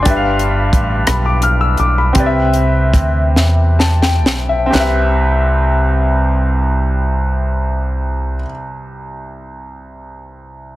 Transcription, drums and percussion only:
0, 0, Header, 1, 2, 480
1, 0, Start_track
1, 0, Key_signature, 0, "major"
1, 0, Tempo, 684151
1, 41, Time_signature, 6, 3, 24, 8
1, 1002, Tempo, 729927
1, 1482, Tempo, 781250
1, 1962, Tempo, 851064
1, 2442, Tempo, 950872
1, 2922, Tempo, 1010101
1, 5782, End_track
2, 0, Start_track
2, 0, Title_t, "Drums"
2, 39, Note_on_c, 9, 42, 81
2, 41, Note_on_c, 9, 36, 84
2, 109, Note_off_c, 9, 42, 0
2, 111, Note_off_c, 9, 36, 0
2, 276, Note_on_c, 9, 42, 41
2, 346, Note_off_c, 9, 42, 0
2, 511, Note_on_c, 9, 36, 75
2, 514, Note_on_c, 9, 42, 43
2, 581, Note_off_c, 9, 36, 0
2, 584, Note_off_c, 9, 42, 0
2, 750, Note_on_c, 9, 42, 72
2, 753, Note_on_c, 9, 37, 93
2, 820, Note_off_c, 9, 42, 0
2, 823, Note_off_c, 9, 37, 0
2, 995, Note_on_c, 9, 42, 44
2, 1062, Note_off_c, 9, 42, 0
2, 1230, Note_on_c, 9, 42, 35
2, 1296, Note_off_c, 9, 42, 0
2, 1476, Note_on_c, 9, 42, 76
2, 1480, Note_on_c, 9, 36, 86
2, 1538, Note_off_c, 9, 42, 0
2, 1541, Note_off_c, 9, 36, 0
2, 1714, Note_on_c, 9, 42, 41
2, 1775, Note_off_c, 9, 42, 0
2, 1959, Note_on_c, 9, 36, 71
2, 1963, Note_on_c, 9, 37, 29
2, 1963, Note_on_c, 9, 42, 42
2, 2016, Note_off_c, 9, 36, 0
2, 2019, Note_off_c, 9, 42, 0
2, 2020, Note_off_c, 9, 37, 0
2, 2201, Note_on_c, 9, 38, 45
2, 2258, Note_off_c, 9, 38, 0
2, 2446, Note_on_c, 9, 38, 57
2, 2496, Note_off_c, 9, 38, 0
2, 2561, Note_on_c, 9, 38, 55
2, 2611, Note_off_c, 9, 38, 0
2, 2679, Note_on_c, 9, 38, 72
2, 2730, Note_off_c, 9, 38, 0
2, 2926, Note_on_c, 9, 38, 74
2, 2974, Note_off_c, 9, 38, 0
2, 5782, End_track
0, 0, End_of_file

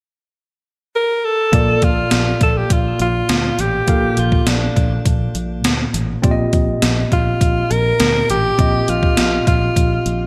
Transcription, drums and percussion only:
0, 0, Header, 1, 2, 480
1, 0, Start_track
1, 0, Key_signature, -2, "major"
1, 0, Tempo, 588235
1, 1248, Time_signature, 4, 2, 24, 8
1, 8378, End_track
2, 0, Start_track
2, 0, Title_t, "Drums"
2, 1248, Note_on_c, 9, 36, 100
2, 1248, Note_on_c, 9, 42, 74
2, 1330, Note_off_c, 9, 36, 0
2, 1330, Note_off_c, 9, 42, 0
2, 1485, Note_on_c, 9, 42, 66
2, 1489, Note_on_c, 9, 36, 90
2, 1567, Note_off_c, 9, 42, 0
2, 1570, Note_off_c, 9, 36, 0
2, 1723, Note_on_c, 9, 38, 111
2, 1726, Note_on_c, 9, 42, 91
2, 1805, Note_off_c, 9, 38, 0
2, 1808, Note_off_c, 9, 42, 0
2, 1965, Note_on_c, 9, 42, 57
2, 1967, Note_on_c, 9, 36, 76
2, 2047, Note_off_c, 9, 42, 0
2, 2048, Note_off_c, 9, 36, 0
2, 2205, Note_on_c, 9, 36, 87
2, 2205, Note_on_c, 9, 42, 87
2, 2287, Note_off_c, 9, 36, 0
2, 2287, Note_off_c, 9, 42, 0
2, 2444, Note_on_c, 9, 42, 57
2, 2525, Note_off_c, 9, 42, 0
2, 2685, Note_on_c, 9, 42, 79
2, 2688, Note_on_c, 9, 38, 106
2, 2766, Note_off_c, 9, 42, 0
2, 2769, Note_off_c, 9, 38, 0
2, 2927, Note_on_c, 9, 42, 69
2, 3009, Note_off_c, 9, 42, 0
2, 3163, Note_on_c, 9, 42, 73
2, 3166, Note_on_c, 9, 36, 97
2, 3244, Note_off_c, 9, 42, 0
2, 3248, Note_off_c, 9, 36, 0
2, 3403, Note_on_c, 9, 42, 65
2, 3485, Note_off_c, 9, 42, 0
2, 3525, Note_on_c, 9, 36, 79
2, 3607, Note_off_c, 9, 36, 0
2, 3645, Note_on_c, 9, 38, 116
2, 3648, Note_on_c, 9, 42, 87
2, 3727, Note_off_c, 9, 38, 0
2, 3729, Note_off_c, 9, 42, 0
2, 3888, Note_on_c, 9, 36, 74
2, 3890, Note_on_c, 9, 42, 60
2, 3969, Note_off_c, 9, 36, 0
2, 3971, Note_off_c, 9, 42, 0
2, 4125, Note_on_c, 9, 36, 90
2, 4126, Note_on_c, 9, 42, 86
2, 4207, Note_off_c, 9, 36, 0
2, 4207, Note_off_c, 9, 42, 0
2, 4365, Note_on_c, 9, 42, 59
2, 4446, Note_off_c, 9, 42, 0
2, 4605, Note_on_c, 9, 42, 81
2, 4608, Note_on_c, 9, 38, 101
2, 4687, Note_off_c, 9, 42, 0
2, 4690, Note_off_c, 9, 38, 0
2, 4849, Note_on_c, 9, 42, 72
2, 4930, Note_off_c, 9, 42, 0
2, 5088, Note_on_c, 9, 36, 105
2, 5090, Note_on_c, 9, 42, 74
2, 5170, Note_off_c, 9, 36, 0
2, 5171, Note_off_c, 9, 42, 0
2, 5327, Note_on_c, 9, 42, 63
2, 5330, Note_on_c, 9, 36, 95
2, 5409, Note_off_c, 9, 42, 0
2, 5412, Note_off_c, 9, 36, 0
2, 5567, Note_on_c, 9, 38, 110
2, 5570, Note_on_c, 9, 42, 88
2, 5649, Note_off_c, 9, 38, 0
2, 5652, Note_off_c, 9, 42, 0
2, 5808, Note_on_c, 9, 42, 61
2, 5809, Note_on_c, 9, 36, 80
2, 5890, Note_off_c, 9, 36, 0
2, 5890, Note_off_c, 9, 42, 0
2, 6047, Note_on_c, 9, 36, 85
2, 6049, Note_on_c, 9, 42, 87
2, 6128, Note_off_c, 9, 36, 0
2, 6130, Note_off_c, 9, 42, 0
2, 6289, Note_on_c, 9, 42, 60
2, 6371, Note_off_c, 9, 42, 0
2, 6525, Note_on_c, 9, 42, 81
2, 6528, Note_on_c, 9, 38, 96
2, 6607, Note_off_c, 9, 42, 0
2, 6610, Note_off_c, 9, 38, 0
2, 6770, Note_on_c, 9, 42, 65
2, 6851, Note_off_c, 9, 42, 0
2, 7007, Note_on_c, 9, 36, 104
2, 7007, Note_on_c, 9, 42, 75
2, 7089, Note_off_c, 9, 36, 0
2, 7089, Note_off_c, 9, 42, 0
2, 7247, Note_on_c, 9, 42, 62
2, 7328, Note_off_c, 9, 42, 0
2, 7367, Note_on_c, 9, 36, 84
2, 7448, Note_off_c, 9, 36, 0
2, 7485, Note_on_c, 9, 38, 112
2, 7488, Note_on_c, 9, 42, 88
2, 7567, Note_off_c, 9, 38, 0
2, 7570, Note_off_c, 9, 42, 0
2, 7728, Note_on_c, 9, 36, 80
2, 7729, Note_on_c, 9, 42, 59
2, 7810, Note_off_c, 9, 36, 0
2, 7811, Note_off_c, 9, 42, 0
2, 7967, Note_on_c, 9, 36, 82
2, 7970, Note_on_c, 9, 42, 83
2, 8049, Note_off_c, 9, 36, 0
2, 8051, Note_off_c, 9, 42, 0
2, 8208, Note_on_c, 9, 42, 59
2, 8290, Note_off_c, 9, 42, 0
2, 8378, End_track
0, 0, End_of_file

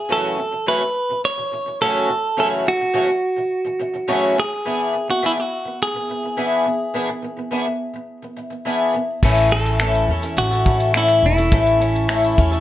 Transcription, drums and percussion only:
0, 0, Header, 1, 2, 480
1, 0, Start_track
1, 0, Key_signature, 3, "major"
1, 0, Tempo, 571429
1, 82, Time_signature, 4, 2, 24, 8
1, 10585, End_track
2, 0, Start_track
2, 0, Title_t, "Drums"
2, 7751, Note_on_c, 9, 36, 92
2, 7752, Note_on_c, 9, 49, 89
2, 7835, Note_off_c, 9, 36, 0
2, 7836, Note_off_c, 9, 49, 0
2, 7873, Note_on_c, 9, 82, 48
2, 7957, Note_off_c, 9, 82, 0
2, 8112, Note_on_c, 9, 82, 45
2, 8196, Note_off_c, 9, 82, 0
2, 8230, Note_on_c, 9, 26, 92
2, 8230, Note_on_c, 9, 82, 59
2, 8314, Note_off_c, 9, 26, 0
2, 8314, Note_off_c, 9, 82, 0
2, 8354, Note_on_c, 9, 82, 50
2, 8438, Note_off_c, 9, 82, 0
2, 8590, Note_on_c, 9, 82, 48
2, 8674, Note_off_c, 9, 82, 0
2, 8708, Note_on_c, 9, 82, 70
2, 8792, Note_off_c, 9, 82, 0
2, 8839, Note_on_c, 9, 82, 46
2, 8923, Note_off_c, 9, 82, 0
2, 8955, Note_on_c, 9, 36, 86
2, 9039, Note_off_c, 9, 36, 0
2, 9072, Note_on_c, 9, 82, 52
2, 9156, Note_off_c, 9, 82, 0
2, 9188, Note_on_c, 9, 82, 64
2, 9191, Note_on_c, 9, 26, 99
2, 9272, Note_off_c, 9, 82, 0
2, 9275, Note_off_c, 9, 26, 0
2, 9311, Note_on_c, 9, 26, 34
2, 9312, Note_on_c, 9, 82, 44
2, 9395, Note_off_c, 9, 26, 0
2, 9396, Note_off_c, 9, 82, 0
2, 9559, Note_on_c, 9, 82, 49
2, 9643, Note_off_c, 9, 82, 0
2, 9674, Note_on_c, 9, 82, 73
2, 9676, Note_on_c, 9, 36, 105
2, 9758, Note_off_c, 9, 82, 0
2, 9760, Note_off_c, 9, 36, 0
2, 9799, Note_on_c, 9, 82, 51
2, 9883, Note_off_c, 9, 82, 0
2, 9923, Note_on_c, 9, 82, 54
2, 10007, Note_off_c, 9, 82, 0
2, 10041, Note_on_c, 9, 82, 45
2, 10125, Note_off_c, 9, 82, 0
2, 10156, Note_on_c, 9, 26, 99
2, 10156, Note_on_c, 9, 82, 57
2, 10240, Note_off_c, 9, 26, 0
2, 10240, Note_off_c, 9, 82, 0
2, 10282, Note_on_c, 9, 82, 43
2, 10366, Note_off_c, 9, 82, 0
2, 10400, Note_on_c, 9, 36, 79
2, 10405, Note_on_c, 9, 82, 40
2, 10484, Note_off_c, 9, 36, 0
2, 10489, Note_off_c, 9, 82, 0
2, 10524, Note_on_c, 9, 82, 50
2, 10585, Note_off_c, 9, 82, 0
2, 10585, End_track
0, 0, End_of_file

